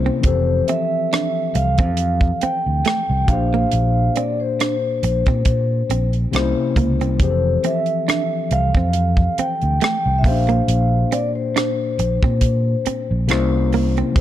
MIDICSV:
0, 0, Header, 1, 8, 480
1, 0, Start_track
1, 0, Key_signature, -1, "major"
1, 0, Tempo, 869565
1, 132, Time_signature, 4, 2, 24, 8
1, 7843, End_track
2, 0, Start_track
2, 0, Title_t, "Vibraphone"
2, 0, Program_c, 0, 11
2, 138, Note_on_c, 0, 72, 80
2, 358, Note_off_c, 0, 72, 0
2, 374, Note_on_c, 0, 76, 96
2, 852, Note_on_c, 0, 77, 91
2, 867, Note_off_c, 0, 76, 0
2, 1334, Note_on_c, 0, 79, 90
2, 1347, Note_off_c, 0, 77, 0
2, 1567, Note_off_c, 0, 79, 0
2, 1573, Note_on_c, 0, 79, 91
2, 1812, Note_on_c, 0, 77, 94
2, 1820, Note_off_c, 0, 79, 0
2, 2293, Note_on_c, 0, 74, 85
2, 2306, Note_off_c, 0, 77, 0
2, 2416, Note_off_c, 0, 74, 0
2, 2428, Note_on_c, 0, 72, 66
2, 3364, Note_off_c, 0, 72, 0
2, 3988, Note_on_c, 0, 72, 78
2, 4226, Note_on_c, 0, 76, 91
2, 4227, Note_off_c, 0, 72, 0
2, 4703, Note_on_c, 0, 77, 85
2, 4713, Note_off_c, 0, 76, 0
2, 5181, Note_on_c, 0, 79, 88
2, 5192, Note_off_c, 0, 77, 0
2, 5414, Note_off_c, 0, 79, 0
2, 5420, Note_on_c, 0, 79, 86
2, 5621, Note_on_c, 0, 76, 68
2, 5627, Note_off_c, 0, 79, 0
2, 5654, Note_off_c, 0, 76, 0
2, 5659, Note_on_c, 0, 77, 82
2, 6139, Note_on_c, 0, 74, 91
2, 6150, Note_off_c, 0, 77, 0
2, 6197, Note_off_c, 0, 74, 0
2, 6267, Note_on_c, 0, 72, 61
2, 7204, Note_off_c, 0, 72, 0
2, 7820, Note_on_c, 0, 72, 85
2, 7843, Note_off_c, 0, 72, 0
2, 7843, End_track
3, 0, Start_track
3, 0, Title_t, "Tine electric piano"
3, 0, Program_c, 1, 4
3, 0, Control_c, 1, 64, 127
3, 0, Note_on_c, 1, 48, 71
3, 0, Note_on_c, 1, 58, 57
3, 0, Note_on_c, 1, 61, 68
3, 0, Note_on_c, 1, 64, 56
3, 0, Note_on_c, 1, 72, 73
3, 112, Note_on_c, 1, 53, 59
3, 124, Note_on_c, 1, 60, 56
3, 126, Note_off_c, 1, 48, 0
3, 129, Note_off_c, 1, 58, 0
3, 132, Note_off_c, 1, 61, 0
3, 132, Note_on_c, 1, 52, 44
3, 134, Note_off_c, 1, 64, 0
3, 140, Control_c, 1, 64, 0
3, 142, Note_on_c, 1, 67, 50
3, 151, Note_on_c, 1, 69, 63
3, 155, Note_off_c, 1, 72, 0
3, 228, Control_c, 1, 64, 127
3, 1780, Note_off_c, 1, 53, 0
3, 1786, Note_off_c, 1, 60, 0
3, 1790, Note_off_c, 1, 52, 0
3, 1795, Note_off_c, 1, 67, 0
3, 1798, Note_on_c, 1, 46, 57
3, 1799, Note_off_c, 1, 69, 0
3, 1808, Note_on_c, 1, 58, 47
3, 1817, Note_on_c, 1, 62, 58
3, 1818, Control_c, 1, 64, 0
3, 1827, Note_on_c, 1, 67, 53
3, 1837, Note_on_c, 1, 72, 66
3, 1914, Control_c, 1, 64, 127
3, 3463, Note_off_c, 1, 46, 0
3, 3468, Note_off_c, 1, 58, 0
3, 3472, Note_off_c, 1, 62, 0
3, 3477, Note_off_c, 1, 67, 0
3, 3482, Note_off_c, 1, 72, 0
3, 3485, Note_on_c, 1, 48, 62
3, 3490, Note_on_c, 1, 58, 54
3, 3497, Note_on_c, 1, 61, 62
3, 3500, Control_c, 1, 64, 0
3, 3500, Note_on_c, 1, 63, 42
3, 3506, Note_on_c, 1, 72, 70
3, 3536, Note_off_c, 1, 63, 0
3, 3537, Note_on_c, 1, 64, 66
3, 3597, Control_c, 1, 64, 127
3, 3959, Note_on_c, 1, 53, 56
3, 3967, Note_on_c, 1, 60, 43
3, 3969, Note_off_c, 1, 48, 0
3, 3971, Note_off_c, 1, 58, 0
3, 3974, Note_off_c, 1, 61, 0
3, 3976, Note_on_c, 1, 52, 50
3, 3979, Note_off_c, 1, 72, 0
3, 3980, Control_c, 1, 64, 0
3, 3989, Note_on_c, 1, 67, 52
3, 3995, Note_off_c, 1, 64, 0
3, 3997, Note_on_c, 1, 68, 47
3, 4024, Note_off_c, 1, 68, 0
3, 4033, Note_on_c, 1, 69, 56
3, 4078, Control_c, 1, 64, 127
3, 5623, Note_off_c, 1, 53, 0
3, 5627, Note_off_c, 1, 60, 0
3, 5632, Note_off_c, 1, 52, 0
3, 5635, Note_on_c, 1, 46, 57
3, 5638, Note_off_c, 1, 67, 0
3, 5646, Note_on_c, 1, 58, 48
3, 5656, Note_on_c, 1, 61, 41
3, 5659, Control_c, 1, 64, 0
3, 5660, Note_off_c, 1, 69, 0
3, 5665, Note_on_c, 1, 67, 46
3, 5674, Note_on_c, 1, 72, 65
3, 5691, Note_on_c, 1, 62, 50
3, 5694, Note_off_c, 1, 61, 0
3, 5760, Control_c, 1, 64, 127
3, 7301, Note_off_c, 1, 46, 0
3, 7307, Note_off_c, 1, 58, 0
3, 7316, Note_off_c, 1, 67, 0
3, 7321, Note_off_c, 1, 72, 0
3, 7326, Note_on_c, 1, 48, 68
3, 7329, Note_off_c, 1, 62, 0
3, 7330, Note_on_c, 1, 58, 64
3, 7336, Note_on_c, 1, 61, 66
3, 7339, Control_c, 1, 64, 0
3, 7341, Note_on_c, 1, 64, 63
3, 7345, Note_on_c, 1, 72, 71
3, 7429, Control_c, 1, 64, 127
3, 7795, Note_on_c, 1, 53, 55
3, 7804, Note_on_c, 1, 60, 56
3, 7809, Note_off_c, 1, 48, 0
3, 7811, Note_off_c, 1, 58, 0
3, 7814, Note_off_c, 1, 61, 0
3, 7815, Note_on_c, 1, 52, 48
3, 7816, Note_off_c, 1, 64, 0
3, 7819, Note_off_c, 1, 72, 0
3, 7820, Control_c, 1, 64, 0
3, 7824, Note_on_c, 1, 67, 52
3, 7843, Note_off_c, 1, 52, 0
3, 7843, Note_off_c, 1, 53, 0
3, 7843, Note_off_c, 1, 60, 0
3, 7843, Note_off_c, 1, 67, 0
3, 7843, End_track
4, 0, Start_track
4, 0, Title_t, "Hollow-body jazz guitar"
4, 0, Program_c, 2, 26
4, 33, Note_on_c, 2, 60, 67
4, 98, Note_off_c, 2, 60, 0
4, 383, Note_on_c, 2, 60, 75
4, 462, Note_off_c, 2, 60, 0
4, 624, Note_on_c, 2, 62, 69
4, 703, Note_off_c, 2, 62, 0
4, 991, Note_on_c, 2, 60, 63
4, 1056, Note_off_c, 2, 60, 0
4, 1342, Note_on_c, 2, 60, 73
4, 1421, Note_off_c, 2, 60, 0
4, 1578, Note_on_c, 2, 57, 67
4, 1659, Note_off_c, 2, 57, 0
4, 1953, Note_on_c, 2, 58, 66
4, 2018, Note_off_c, 2, 58, 0
4, 2302, Note_on_c, 2, 60, 72
4, 2382, Note_off_c, 2, 60, 0
4, 2544, Note_on_c, 2, 62, 72
4, 2623, Note_off_c, 2, 62, 0
4, 2915, Note_on_c, 2, 60, 71
4, 2979, Note_off_c, 2, 60, 0
4, 3262, Note_on_c, 2, 60, 70
4, 3341, Note_off_c, 2, 60, 0
4, 3739, Note_on_c, 2, 58, 70
4, 3819, Note_off_c, 2, 58, 0
4, 3871, Note_on_c, 2, 60, 63
4, 3936, Note_off_c, 2, 60, 0
4, 4221, Note_on_c, 2, 60, 69
4, 4301, Note_off_c, 2, 60, 0
4, 4461, Note_on_c, 2, 62, 67
4, 4541, Note_off_c, 2, 62, 0
4, 4840, Note_on_c, 2, 60, 68
4, 4902, Note_off_c, 2, 60, 0
4, 5185, Note_on_c, 2, 60, 68
4, 5263, Note_off_c, 2, 60, 0
4, 5420, Note_on_c, 2, 57, 66
4, 5500, Note_off_c, 2, 57, 0
4, 5789, Note_on_c, 2, 58, 63
4, 5855, Note_off_c, 2, 58, 0
4, 6141, Note_on_c, 2, 60, 77
4, 6221, Note_off_c, 2, 60, 0
4, 6381, Note_on_c, 2, 62, 76
4, 6461, Note_off_c, 2, 62, 0
4, 6756, Note_on_c, 2, 60, 67
4, 6820, Note_off_c, 2, 60, 0
4, 7103, Note_on_c, 2, 60, 75
4, 7183, Note_off_c, 2, 60, 0
4, 7585, Note_on_c, 2, 58, 78
4, 7664, Note_off_c, 2, 58, 0
4, 7716, Note_on_c, 2, 60, 71
4, 7780, Note_off_c, 2, 60, 0
4, 7843, End_track
5, 0, Start_track
5, 0, Title_t, "Fingered electric bass"
5, 0, Program_c, 3, 33
5, 136, Note_on_c, 3, 29, 91
5, 331, Note_off_c, 3, 29, 0
5, 856, Note_on_c, 3, 36, 83
5, 989, Note_on_c, 3, 41, 87
5, 998, Note_off_c, 3, 36, 0
5, 1272, Note_off_c, 3, 41, 0
5, 1470, Note_on_c, 3, 38, 66
5, 1556, Note_off_c, 3, 38, 0
5, 1709, Note_on_c, 3, 36, 83
5, 1795, Note_off_c, 3, 36, 0
5, 1815, Note_on_c, 3, 34, 80
5, 2011, Note_off_c, 3, 34, 0
5, 2058, Note_on_c, 3, 34, 102
5, 2252, Note_off_c, 3, 34, 0
5, 2778, Note_on_c, 3, 34, 84
5, 2884, Note_off_c, 3, 34, 0
5, 2912, Note_on_c, 3, 46, 84
5, 2997, Note_off_c, 3, 46, 0
5, 3016, Note_on_c, 3, 46, 80
5, 3211, Note_off_c, 3, 46, 0
5, 3254, Note_on_c, 3, 34, 73
5, 3450, Note_off_c, 3, 34, 0
5, 3496, Note_on_c, 3, 36, 81
5, 3603, Note_off_c, 3, 36, 0
5, 3735, Note_on_c, 3, 37, 74
5, 3869, Note_off_c, 3, 37, 0
5, 3869, Note_on_c, 3, 36, 64
5, 3976, Note_on_c, 3, 29, 88
5, 3984, Note_off_c, 3, 36, 0
5, 4171, Note_off_c, 3, 29, 0
5, 4699, Note_on_c, 3, 36, 92
5, 4805, Note_off_c, 3, 36, 0
5, 4833, Note_on_c, 3, 41, 90
5, 5114, Note_off_c, 3, 41, 0
5, 5314, Note_on_c, 3, 38, 75
5, 5398, Note_off_c, 3, 38, 0
5, 5552, Note_on_c, 3, 36, 74
5, 5656, Note_off_c, 3, 36, 0
5, 5656, Note_on_c, 3, 34, 74
5, 5851, Note_off_c, 3, 34, 0
5, 5895, Note_on_c, 3, 34, 92
5, 6091, Note_off_c, 3, 34, 0
5, 6619, Note_on_c, 3, 34, 83
5, 6725, Note_off_c, 3, 34, 0
5, 6753, Note_on_c, 3, 46, 87
5, 7034, Note_off_c, 3, 46, 0
5, 7236, Note_on_c, 3, 34, 87
5, 7344, Note_off_c, 3, 34, 0
5, 7344, Note_on_c, 3, 36, 83
5, 7732, Note_off_c, 3, 36, 0
5, 7818, Note_on_c, 3, 29, 88
5, 7843, Note_off_c, 3, 29, 0
5, 7843, End_track
6, 0, Start_track
6, 0, Title_t, "Muted fingered electric bass strokes"
6, 1340, Note_on_c, 9, 29, 39
6, 1395, Note_off_c, 9, 29, 0
6, 5179, Note_on_c, 9, 29, 34
6, 5234, Note_off_c, 9, 29, 0
6, 7102, Note_on_c, 9, 29, 43
6, 7157, Note_off_c, 9, 29, 0
6, 7843, End_track
7, 0, Start_track
7, 0, Title_t, "Muted hollow-body jazz guitar strokes"
7, 859, Note_on_c, 9, 29, 39
7, 914, Note_off_c, 9, 29, 0
7, 1821, Note_on_c, 9, 29, 42
7, 1876, Note_off_c, 9, 29, 0
7, 2784, Note_on_c, 9, 29, 41
7, 2839, Note_off_c, 9, 29, 0
7, 3504, Note_on_c, 9, 29, 39
7, 3559, Note_off_c, 9, 29, 0
7, 4706, Note_on_c, 9, 29, 39
7, 4761, Note_off_c, 9, 29, 0
7, 5664, Note_on_c, 9, 29, 42
7, 5719, Note_off_c, 9, 29, 0
7, 6622, Note_on_c, 9, 29, 41
7, 6678, Note_off_c, 9, 29, 0
7, 7342, Note_on_c, 9, 29, 38
7, 7397, Note_off_c, 9, 29, 0
7, 7843, End_track
8, 0, Start_track
8, 0, Title_t, "Drums"
8, 129, Note_on_c, 9, 42, 65
8, 132, Note_on_c, 9, 36, 87
8, 185, Note_off_c, 9, 42, 0
8, 187, Note_off_c, 9, 36, 0
8, 375, Note_on_c, 9, 42, 51
8, 430, Note_off_c, 9, 42, 0
8, 622, Note_on_c, 9, 42, 66
8, 628, Note_on_c, 9, 37, 98
8, 678, Note_off_c, 9, 42, 0
8, 683, Note_off_c, 9, 37, 0
8, 856, Note_on_c, 9, 42, 58
8, 911, Note_off_c, 9, 42, 0
8, 981, Note_on_c, 9, 42, 31
8, 986, Note_on_c, 9, 36, 85
8, 1036, Note_off_c, 9, 42, 0
8, 1041, Note_off_c, 9, 36, 0
8, 1087, Note_on_c, 9, 42, 69
8, 1142, Note_off_c, 9, 42, 0
8, 1219, Note_on_c, 9, 36, 82
8, 1274, Note_off_c, 9, 36, 0
8, 1332, Note_on_c, 9, 42, 61
8, 1388, Note_off_c, 9, 42, 0
8, 1573, Note_on_c, 9, 42, 57
8, 1588, Note_on_c, 9, 37, 96
8, 1628, Note_off_c, 9, 42, 0
8, 1643, Note_off_c, 9, 37, 0
8, 1811, Note_on_c, 9, 36, 90
8, 1813, Note_on_c, 9, 42, 57
8, 1866, Note_off_c, 9, 36, 0
8, 1868, Note_off_c, 9, 42, 0
8, 2051, Note_on_c, 9, 42, 65
8, 2106, Note_off_c, 9, 42, 0
8, 2294, Note_on_c, 9, 42, 54
8, 2350, Note_off_c, 9, 42, 0
8, 2541, Note_on_c, 9, 42, 70
8, 2546, Note_on_c, 9, 37, 98
8, 2596, Note_off_c, 9, 42, 0
8, 2602, Note_off_c, 9, 37, 0
8, 2777, Note_on_c, 9, 42, 58
8, 2832, Note_off_c, 9, 42, 0
8, 2903, Note_on_c, 9, 42, 29
8, 2907, Note_on_c, 9, 36, 87
8, 2958, Note_off_c, 9, 42, 0
8, 2962, Note_off_c, 9, 36, 0
8, 3009, Note_on_c, 9, 42, 71
8, 3012, Note_on_c, 9, 36, 76
8, 3064, Note_off_c, 9, 42, 0
8, 3067, Note_off_c, 9, 36, 0
8, 3258, Note_on_c, 9, 42, 64
8, 3313, Note_off_c, 9, 42, 0
8, 3385, Note_on_c, 9, 42, 26
8, 3440, Note_off_c, 9, 42, 0
8, 3496, Note_on_c, 9, 42, 62
8, 3511, Note_on_c, 9, 37, 93
8, 3551, Note_off_c, 9, 42, 0
8, 3566, Note_off_c, 9, 37, 0
8, 3733, Note_on_c, 9, 36, 70
8, 3736, Note_on_c, 9, 42, 54
8, 3788, Note_off_c, 9, 36, 0
8, 3791, Note_off_c, 9, 42, 0
8, 3869, Note_on_c, 9, 42, 31
8, 3925, Note_off_c, 9, 42, 0
8, 3972, Note_on_c, 9, 42, 63
8, 3973, Note_on_c, 9, 36, 87
8, 4027, Note_off_c, 9, 42, 0
8, 4028, Note_off_c, 9, 36, 0
8, 4216, Note_on_c, 9, 42, 54
8, 4271, Note_off_c, 9, 42, 0
8, 4339, Note_on_c, 9, 42, 34
8, 4394, Note_off_c, 9, 42, 0
8, 4464, Note_on_c, 9, 42, 70
8, 4469, Note_on_c, 9, 37, 89
8, 4519, Note_off_c, 9, 42, 0
8, 4525, Note_off_c, 9, 37, 0
8, 4697, Note_on_c, 9, 42, 55
8, 4752, Note_off_c, 9, 42, 0
8, 4828, Note_on_c, 9, 36, 81
8, 4883, Note_off_c, 9, 36, 0
8, 4932, Note_on_c, 9, 42, 73
8, 4987, Note_off_c, 9, 42, 0
8, 5061, Note_on_c, 9, 36, 78
8, 5116, Note_off_c, 9, 36, 0
8, 5178, Note_on_c, 9, 42, 65
8, 5233, Note_off_c, 9, 42, 0
8, 5308, Note_on_c, 9, 42, 24
8, 5363, Note_off_c, 9, 42, 0
8, 5417, Note_on_c, 9, 42, 61
8, 5432, Note_on_c, 9, 37, 100
8, 5472, Note_off_c, 9, 42, 0
8, 5487, Note_off_c, 9, 37, 0
8, 5654, Note_on_c, 9, 36, 83
8, 5657, Note_on_c, 9, 46, 40
8, 5709, Note_off_c, 9, 36, 0
8, 5712, Note_off_c, 9, 46, 0
8, 5793, Note_on_c, 9, 42, 29
8, 5848, Note_off_c, 9, 42, 0
8, 5898, Note_on_c, 9, 42, 61
8, 5953, Note_off_c, 9, 42, 0
8, 6139, Note_on_c, 9, 42, 58
8, 6194, Note_off_c, 9, 42, 0
8, 6384, Note_on_c, 9, 42, 69
8, 6390, Note_on_c, 9, 37, 93
8, 6440, Note_off_c, 9, 42, 0
8, 6445, Note_off_c, 9, 37, 0
8, 6619, Note_on_c, 9, 42, 53
8, 6674, Note_off_c, 9, 42, 0
8, 6749, Note_on_c, 9, 36, 93
8, 6804, Note_off_c, 9, 36, 0
8, 6851, Note_on_c, 9, 42, 75
8, 6853, Note_on_c, 9, 36, 72
8, 6906, Note_off_c, 9, 42, 0
8, 6908, Note_off_c, 9, 36, 0
8, 7097, Note_on_c, 9, 42, 60
8, 7152, Note_off_c, 9, 42, 0
8, 7334, Note_on_c, 9, 42, 60
8, 7349, Note_on_c, 9, 37, 94
8, 7390, Note_off_c, 9, 42, 0
8, 7405, Note_off_c, 9, 37, 0
8, 7576, Note_on_c, 9, 46, 39
8, 7631, Note_off_c, 9, 46, 0
8, 7712, Note_on_c, 9, 42, 28
8, 7767, Note_off_c, 9, 42, 0
8, 7815, Note_on_c, 9, 36, 95
8, 7817, Note_on_c, 9, 42, 59
8, 7843, Note_off_c, 9, 36, 0
8, 7843, Note_off_c, 9, 42, 0
8, 7843, End_track
0, 0, End_of_file